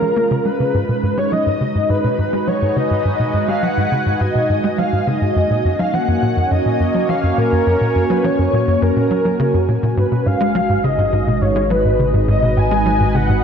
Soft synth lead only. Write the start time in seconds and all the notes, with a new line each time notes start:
Already playing: A#4
0.45 B4
1.18 C#5
1.32 D#5
1.90 B4
2.47 C#5
2.76 D#5
3.48 F5
3.63 F#5
4.20 D#5
4.78 F5
5.07 D#5
5.79 F5
5.93 F#5
6.51 D#5
7.09 F5
7.38 A#4
8.10 B4
8.24 C#5
8.82 A#4
9.97 B4
10.26 F5
10.84 D#5
11.41 C#5
11.70 B4
12.28 D#5
12.57 G#5
13.15 F#5